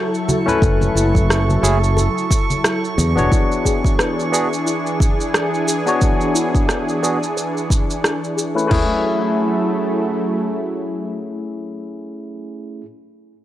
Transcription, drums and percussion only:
0.15 shaker
0.29 high conga, shaker
0.48 low conga, shaker
0.62 kick, shaker
0.81 high conga, shaker
0.97 shaker
1.15 kick, shaker
1.30 cross-stick, shaker
1.49 high conga, shaker
1.64 shaker
1.84 shaker
1.97 high conga, shaker
2.18 shaker
2.31 kick, shaker
2.50 high conga, shaker
2.64 cross-stick, shaker
2.85 shaker
2.98 high conga, shaker
3.17 low conga, shaker
3.32 kick, shaker
3.52 shaker
3.65 kick, shaker
3.85 kick, shaker
3.99 cross-stick, shaker
4.20 shaker
4.34 shaker
4.53 shaker
4.67 shaker
4.87 shaker
5.00 kick, shaker
5.21 shaker
5.34 cross-stick, shaker
5.54 shaker
5.68 shaker
5.87 shaker
6.01 kick, shaker
6.21 shaker
6.36 shaker
6.55 kick, shaker
6.69 cross-stick, shaker
6.89 shaker
7.04 shaker
7.23 shaker
7.38 shaker
7.57 shaker
7.70 kick, shaker
7.91 shaker
8.04 cross-stick, shaker
8.24 shaker
8.38 shaker
8.58 shaker
8.71 kick, floor tom, crash

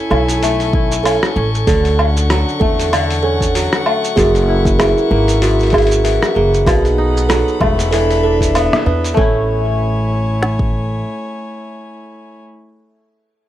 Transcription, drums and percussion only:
0.11 low woodblock
0.29 open hi-hat, shaker
0.43 open hi-hat, shaker
0.60 open hi-hat, shaker
0.73 kick
0.92 shaker
1.05 open hi-hat, low woodblock, shaker
1.23 cross-stick, shaker
1.55 shaker
1.67 kick, open hi-hat, shaker
1.85 open hi-hat, shaker
1.99 low woodblock
2.17 shaker
2.30 cross-stick, open hi-hat, shaker
2.49 shaker
2.61 kick
2.79 open hi-hat, shaker
2.93 open hi-hat, low woodblock, shaker
3.10 open hi-hat, shaker
3.41 kick, shaker
3.55 open hi-hat, shaker
3.73 cross-stick, shaker
3.86 low woodblock
4.04 shaker
4.17 kick, open hi-hat, shaker
4.35 open hi-hat, shaker
4.65 kick, shaker
4.80 cross-stick, open hi-hat, low woodblock, shaker
4.98 shaker
5.28 open hi-hat, shaker
5.42 open hi-hat, shaker
5.59 open hi-hat, shaker
5.63 open hi-hat
5.67 open hi-hat
5.70 kick, open hi-hat
5.74 open hi-hat, low woodblock
5.78 open hi-hat
5.82 open hi-hat
5.87 open hi-hat
5.91 shaker
6.05 open hi-hat, shaker
6.23 cross-stick, shaker
6.54 shaker
6.67 kick, open hi-hat, low woodblock, shaker
6.85 open hi-hat, shaker
7.17 shaker
7.30 cross-stick, open hi-hat, shaker
7.48 shaker
7.61 kick, low woodblock
7.79 open hi-hat, shaker
7.93 open hi-hat, shaker
8.11 open hi-hat, shaker
8.41 kick, open hi-hat, shaker
8.55 open hi-hat, low woodblock, shaker
8.73 cross-stick, shaker
9.04 open hi-hat, shaker
9.17 kick
10.43 snare
10.59 kick

